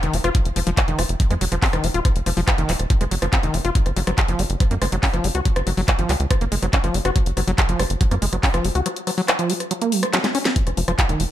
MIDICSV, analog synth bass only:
0, 0, Header, 1, 2, 480
1, 0, Start_track
1, 0, Tempo, 425532
1, 393, Time_signature, 4, 2, 24, 8
1, 12758, End_track
2, 0, Start_track
2, 0, Title_t, "Analog synth bass"
2, 0, Program_c, 0, 38
2, 32, Note_on_c, 0, 29, 86
2, 109, Note_off_c, 0, 29, 0
2, 152, Note_on_c, 0, 29, 107
2, 229, Note_off_c, 0, 29, 0
2, 272, Note_on_c, 0, 29, 92
2, 349, Note_off_c, 0, 29, 0
2, 512, Note_on_c, 0, 29, 89
2, 589, Note_off_c, 0, 29, 0
2, 632, Note_on_c, 0, 29, 99
2, 709, Note_off_c, 0, 29, 0
2, 753, Note_on_c, 0, 29, 92
2, 829, Note_off_c, 0, 29, 0
2, 993, Note_on_c, 0, 29, 86
2, 1069, Note_off_c, 0, 29, 0
2, 1113, Note_on_c, 0, 29, 105
2, 1189, Note_off_c, 0, 29, 0
2, 1232, Note_on_c, 0, 29, 93
2, 1309, Note_off_c, 0, 29, 0
2, 1473, Note_on_c, 0, 41, 85
2, 1549, Note_off_c, 0, 41, 0
2, 1592, Note_on_c, 0, 29, 96
2, 1669, Note_off_c, 0, 29, 0
2, 1713, Note_on_c, 0, 29, 88
2, 1789, Note_off_c, 0, 29, 0
2, 1952, Note_on_c, 0, 29, 85
2, 2029, Note_off_c, 0, 29, 0
2, 2072, Note_on_c, 0, 29, 103
2, 2149, Note_off_c, 0, 29, 0
2, 2192, Note_on_c, 0, 27, 88
2, 2269, Note_off_c, 0, 27, 0
2, 2432, Note_on_c, 0, 29, 88
2, 2509, Note_off_c, 0, 29, 0
2, 2552, Note_on_c, 0, 29, 102
2, 2629, Note_off_c, 0, 29, 0
2, 2672, Note_on_c, 0, 29, 96
2, 2749, Note_off_c, 0, 29, 0
2, 2912, Note_on_c, 0, 30, 90
2, 2989, Note_off_c, 0, 30, 0
2, 3033, Note_on_c, 0, 27, 98
2, 3109, Note_off_c, 0, 27, 0
2, 3152, Note_on_c, 0, 27, 89
2, 3229, Note_off_c, 0, 27, 0
2, 3392, Note_on_c, 0, 29, 87
2, 3469, Note_off_c, 0, 29, 0
2, 3513, Note_on_c, 0, 30, 99
2, 3589, Note_off_c, 0, 30, 0
2, 3633, Note_on_c, 0, 30, 90
2, 3709, Note_off_c, 0, 30, 0
2, 3873, Note_on_c, 0, 29, 85
2, 3949, Note_off_c, 0, 29, 0
2, 3993, Note_on_c, 0, 29, 107
2, 4069, Note_off_c, 0, 29, 0
2, 4113, Note_on_c, 0, 29, 91
2, 4189, Note_off_c, 0, 29, 0
2, 4352, Note_on_c, 0, 30, 88
2, 4429, Note_off_c, 0, 30, 0
2, 4473, Note_on_c, 0, 30, 102
2, 4549, Note_off_c, 0, 30, 0
2, 4593, Note_on_c, 0, 30, 90
2, 4669, Note_off_c, 0, 30, 0
2, 4832, Note_on_c, 0, 30, 88
2, 4909, Note_off_c, 0, 30, 0
2, 4952, Note_on_c, 0, 30, 99
2, 5029, Note_off_c, 0, 30, 0
2, 5072, Note_on_c, 0, 30, 90
2, 5149, Note_off_c, 0, 30, 0
2, 5312, Note_on_c, 0, 42, 85
2, 5389, Note_off_c, 0, 42, 0
2, 5432, Note_on_c, 0, 30, 103
2, 5509, Note_off_c, 0, 30, 0
2, 5552, Note_on_c, 0, 30, 90
2, 5629, Note_off_c, 0, 30, 0
2, 5792, Note_on_c, 0, 30, 84
2, 5869, Note_off_c, 0, 30, 0
2, 5913, Note_on_c, 0, 30, 105
2, 5989, Note_off_c, 0, 30, 0
2, 6033, Note_on_c, 0, 37, 92
2, 6109, Note_off_c, 0, 37, 0
2, 6272, Note_on_c, 0, 30, 85
2, 6349, Note_off_c, 0, 30, 0
2, 6392, Note_on_c, 0, 30, 103
2, 6469, Note_off_c, 0, 30, 0
2, 6512, Note_on_c, 0, 30, 94
2, 6589, Note_off_c, 0, 30, 0
2, 6752, Note_on_c, 0, 32, 89
2, 6829, Note_off_c, 0, 32, 0
2, 6872, Note_on_c, 0, 37, 98
2, 6949, Note_off_c, 0, 37, 0
2, 6992, Note_on_c, 0, 37, 95
2, 7069, Note_off_c, 0, 37, 0
2, 7233, Note_on_c, 0, 30, 88
2, 7309, Note_off_c, 0, 30, 0
2, 7352, Note_on_c, 0, 30, 95
2, 7429, Note_off_c, 0, 30, 0
2, 7472, Note_on_c, 0, 30, 93
2, 7549, Note_off_c, 0, 30, 0
2, 7712, Note_on_c, 0, 30, 82
2, 7789, Note_off_c, 0, 30, 0
2, 7832, Note_on_c, 0, 30, 98
2, 7909, Note_off_c, 0, 30, 0
2, 7953, Note_on_c, 0, 30, 94
2, 8029, Note_off_c, 0, 30, 0
2, 8192, Note_on_c, 0, 30, 87
2, 8269, Note_off_c, 0, 30, 0
2, 8312, Note_on_c, 0, 30, 96
2, 8389, Note_off_c, 0, 30, 0
2, 8432, Note_on_c, 0, 30, 94
2, 8509, Note_off_c, 0, 30, 0
2, 8672, Note_on_c, 0, 30, 89
2, 8749, Note_off_c, 0, 30, 0
2, 8792, Note_on_c, 0, 30, 104
2, 8869, Note_off_c, 0, 30, 0
2, 8912, Note_on_c, 0, 30, 91
2, 8989, Note_off_c, 0, 30, 0
2, 9152, Note_on_c, 0, 42, 88
2, 9229, Note_off_c, 0, 42, 0
2, 9272, Note_on_c, 0, 30, 95
2, 9349, Note_off_c, 0, 30, 0
2, 9392, Note_on_c, 0, 30, 90
2, 9469, Note_off_c, 0, 30, 0
2, 9632, Note_on_c, 0, 30, 85
2, 9709, Note_off_c, 0, 30, 0
2, 9752, Note_on_c, 0, 30, 103
2, 9828, Note_off_c, 0, 30, 0
2, 9872, Note_on_c, 0, 37, 91
2, 9949, Note_off_c, 0, 37, 0
2, 12032, Note_on_c, 0, 29, 84
2, 12109, Note_off_c, 0, 29, 0
2, 12152, Note_on_c, 0, 29, 99
2, 12229, Note_off_c, 0, 29, 0
2, 12272, Note_on_c, 0, 29, 92
2, 12349, Note_off_c, 0, 29, 0
2, 12512, Note_on_c, 0, 29, 89
2, 12589, Note_off_c, 0, 29, 0
2, 12632, Note_on_c, 0, 29, 97
2, 12709, Note_off_c, 0, 29, 0
2, 12758, End_track
0, 0, End_of_file